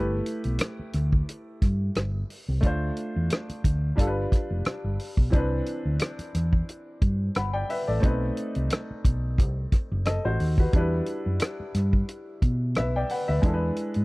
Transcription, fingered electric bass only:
0.00 0.19 G1 medium
0.45 0.57 B1 medium
0.79 muted fingered electric bass stroke soft
0.94 1.21 D2 medium
1.62 1.89 G2 medium
1.96 2.22 G1 medium
2.49 2.64 C2 medium
2.64 2.90 D2 medium
3.16 3.28 E2 medium
3.50 muted fingered electric bass stroke soft
3.64 3.91 D2 medium
3.98 4.25 G1 medium
4.51 4.63 F1 medium
4.66 muted fingered electric bass stroke soft
4.84 4.96 G1 medium
5.18 5.30 B1 medium
5.33 5.60 C2 medium
5.85 5.97 D2 medium
6.19 muted fingered electric bass stroke soft
6.35 6.61 E2 medium
7.02 7.28 G2 medium
7.36 7.62 G1 medium
7.88 8.00 A1 medium
8.04 8.30 B1 medium
8.56 8.68 C2 medium
8.91 muted fingered electric bass stroke soft
9.05 9.39 B1 medium
9.39 9.65 C2 medium
9.92 10.17 F#1 medium
10.25 10.37 A1 medium
10.40 10.66 D#2 medium
10.74 11.00 E2 medium
11.26 11.38 F#2 medium
11.60 muted fingered electric bass stroke soft
11.75 12.01 G2 medium
12.43 12.78 B2 medium
12.77 13.03 B1 medium
13.29 13.41 D2 medium
13.43 13.70 E2 medium
13.96 14.05 G#2 medium

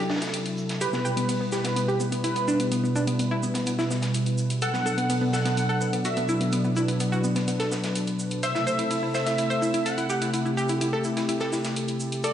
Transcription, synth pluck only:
0.10 0.19 D4 medium
0.81 0.90 G4 medium
0.93 1.02 B3 medium
1.05 1.14 G4 medium
1.17 1.26 B3 medium
1.29 1.38 B3 medium
1.41 1.50 B3 medium
1.52 1.62 G4 medium
1.65 1.74 B3 medium
1.76 1.86 B3 medium
1.88 1.98 G4 loud
2.00 2.10 B3 medium
2.12 2.21 B3 medium
2.24 2.33 E4 medium
2.36 2.45 B3 medium
2.48 2.57 D4 medium
2.60 2.69 B3 medium
2.72 2.81 B3 medium
2.84 2.93 B3 medium
2.96 3.05 D4 medium
3.07 3.17 B3 medium
3.19 3.29 B3 medium
3.31 3.40 E4 medium
3.43 3.52 B3 medium
3.55 3.64 B3 medium
3.67 3.76 B3 medium
3.79 3.88 E4 medium
3.90 4.00 B3 medium
4.62 4.71 A4 loud
4.74 4.83 B3 medium
4.86 4.95 A4 medium
4.98 5.07 B3 medium
5.10 5.19 B3 medium
5.21 5.31 B3 medium
5.33 5.43 A4 medium
5.45 5.55 B3 medium
5.57 5.67 B3 medium
5.69 5.78 A4 medium
5.81 5.90 B3 medium
5.93 6.02 B3 medium
6.05 6.14 F#4 medium
6.17 6.26 B3 medium
6.29 6.38 E4 medium
6.41 6.50 B3 medium
6.53 6.62 B3 medium
6.65 6.74 B3 medium
6.76 6.86 E4 medium
6.88 6.98 B3 medium
7.00 7.10 B3 medium
7.12 7.21 F#4 medium
7.24 7.33 B3 medium
7.36 7.45 B3 medium
7.48 7.57 B3 medium
7.60 7.69 A4 medium
7.72 7.81 B3 medium
8.43 8.52 C5 loud
8.55 8.64 E4 medium
8.67 8.76 C5 medium
8.79 8.88 E4 medium
8.91 9.00 E4 medium
9.03 9.12 E4 medium
9.15 9.24 C5 medium
9.27 9.36 E4 medium
9.38 9.48 E4 medium
9.50 9.59 C5 medium
9.62 9.71 E4 medium
9.74 9.83 E4 medium
9.86 9.95 A4 medium
9.98 10.07 E4 medium
10.10 10.19 G4 medium
10.22 10.31 E4 medium
10.34 10.43 E4 medium
10.45 10.55 E4 medium
10.57 10.67 G4 medium
10.69 10.79 E4 medium
10.81 10.90 E4 medium
10.93 11.02 A4 loud
11.05 11.14 E4 medium
11.17 11.26 E4 medium
11.29 11.38 E4 medium
11.41 11.50 A4 medium
11.53 11.62 E4 medium
12.24 12.33 A4 loud

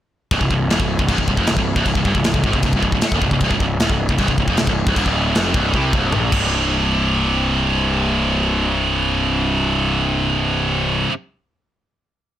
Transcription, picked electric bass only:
0.32 0.40 C1 loud
0.41 0.50 C1 medium
0.51 0.69 C1 medium
0.72 0.80 D#1 loud
0.80 0.98 C1 medium
0.99 1.08 C1 medium
1.09 1.18 C1 medium
1.18 1.27 C1 medium
1.28 1.37 C1 medium
1.38 1.47 F1 medium
1.49 1.56 C1 medium
1.57 1.75 C1 medium
1.76 1.85 C1 loud
1.86 1.95 C1 medium
1.95 2.04 C1 medium
2.05 2.14 G1 medium
2.15 2.24 C1 medium
2.25 2.33 C1 medium
2.34 2.43 C1 medium
2.44 2.53 G#1 loud
2.53 2.62 C1 medium
2.63 2.72 C1 medium
2.74 2.82 C1 loud
2.83 2.92 C1 medium
2.92 3.01 C1 medium
3.02 muted picked electric bass stroke soft
3.12 3.21 D#1 loud
3.22 3.31 C1 medium
3.32 3.40 C1 medium
3.41 3.50 C1 loud
3.51 3.60 C1 medium
3.60 3.78 C1 medium
3.80 3.89 D#1 loud
3.90 4.08 C1 medium
4.09 4.18 C1 medium
4.19 4.28 C1 loud
4.29 4.37 C1 medium
4.38 4.47 C1 medium
4.48 4.57 F1 loud
4.59 4.67 C1 medium
4.68 4.86 C1 medium
4.87 4.96 C1 medium
4.96 5.06 D#1 loud
5.06 5.33 D1 loud
5.37 5.54 F1 loud
5.55 5.73 C1 medium
5.74 5.92 C2 loud
5.93 6.12 C1 loud
6.14 6.32 A#1 medium
6.32 11.04 C1 loud

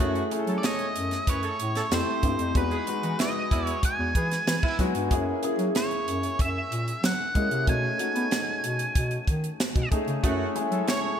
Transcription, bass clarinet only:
0.00 0.21 F#2 medium
0.47 0.58 F#3 medium
0.95 1.17 F#2 medium
1.27 1.49 F#2 medium
1.59 1.81 A2 medium
1.91 2.02 F2 medium
2.23 2.34 G2 medium
2.39 2.50 F2 medium
2.55 2.77 E2 medium
3.03 3.14 E3 medium
3.51 3.73 E2 medium
3.99 4.10 E2 medium
4.15 4.37 E3 medium
4.46 4.58 E3 medium
4.79 4.90 F#3 medium
4.95 5.06 G2 medium
5.11 5.33 F#2 medium
5.59 5.70 F#3 medium
6.07 6.29 F#2 medium
6.39 6.62 F#2 medium
6.71 6.93 A#2 medium
7.03 7.14 F#3 medium
7.35 7.46 G#3 medium
7.51 7.62 C3 medium
7.67 7.90 B2 medium
8.15 8.26 B3 medium
8.63 8.86 B2 medium
8.95 9.18 B2 medium
9.27 9.50 D#3 medium
9.76 9.87 B2 medium
10.07 10.19 C#3 medium
10.24 10.46 F#2 medium
10.71 10.82 F#3 medium

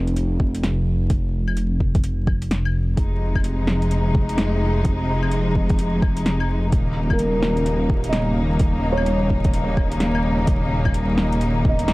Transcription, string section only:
2.97 6.69 C3 medium
2.97 6.69 F3 medium
2.97 6.69 G#3 medium
2.97 6.69 D#4 medium
6.72 11.93 C#3 medium
6.72 11.93 G3 medium
6.72 11.93 A#3 medium
6.72 11.93 D#4 medium

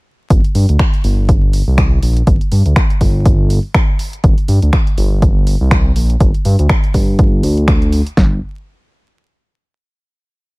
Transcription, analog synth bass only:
0.30 0.41 G1 loud
0.55 0.66 G2 medium
0.69 0.77 D2 medium
1.04 1.62 G1 loud
1.67 1.99 C2 loud
2.02 2.22 A#1 medium
2.27 2.38 G1 loud
2.52 2.63 G2 medium
2.66 2.74 D2 medium
3.01 3.59 G1 loud
4.24 4.35 G1 loud
4.48 4.59 G2 medium
4.62 4.71 D2 medium
4.98 5.56 G1 loud
5.61 5.92 C2 loud
5.96 6.16 A#1 medium
6.21 6.31 G1 loud
6.45 6.56 G2 medium
6.59 6.67 D2 medium
6.94 7.43 G1 loud
7.44 8.02 D2 medium
8.17 8.40 G1 medium

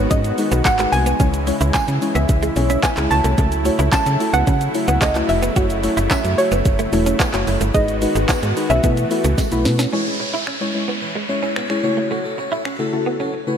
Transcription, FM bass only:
0.11 0.32 G#2 loud
0.52 0.62 B1 loud
0.65 0.87 G#1 loud
0.93 1.14 C2 medium
1.20 1.52 C#2 loud
1.61 1.72 C#2 medium
1.74 1.80 C#3 soft
1.88 1.99 C#3 loud
2.15 2.26 C#2 medium
2.29 2.51 C#2 loud
2.56 2.78 B1 loud
2.97 3.08 C#2 loud
3.11 3.22 C#2 loud
3.24 3.35 C2 medium
3.38 3.70 C#2 loud
3.79 3.90 C#2 loud
4.06 4.17 C#3 loud
4.34 4.44 C#2 medium
4.47 4.69 C#3 loud
4.88 4.99 C#2 medium
5.02 5.23 C#2 loud
5.29 5.51 F1 medium
5.56 5.89 F#1 loud
5.97 6.08 F#1 medium
6.24 6.35 F#2 medium
6.52 6.62 F#1 medium
6.66 6.87 F#1 medium
6.93 7.14 E1 loud
7.34 7.44 F#1 medium
7.47 7.58 F#1 medium
7.61 7.72 G1 medium
7.75 8.07 G#1 loud
8.15 8.26 G#1 medium
8.43 8.53 G#2 loud
8.70 8.81 B1 loud
8.84 9.05 B2 loud
9.25 9.35 C#2 medium
9.52 9.67 B1 medium
9.65 9.87 B2 loud

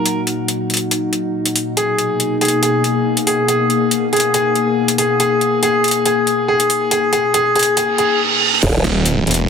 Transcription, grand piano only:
0.00 0.19 A#4 medium
1.77 2.33 G#4 medium
2.41 2.61 G#4 medium
2.63 3.19 G#4 medium
3.27 3.47 G#4 medium
3.48 4.05 G#4 medium
4.13 4.32 G#4 medium
4.34 4.90 G#4 loud
4.98 5.18 G#4 medium
5.20 5.61 G#4 loud
5.63 6.04 G#4 loud
6.06 6.47 G#4 medium
6.48 6.90 G#4 loud
6.91 7.11 G#4 loud
7.13 7.33 G#4 loud
7.34 7.54 G#4 loud
7.56 7.75 G#4 loud
7.77 7.97 G#4 loud
7.98 8.18 G#4 loud

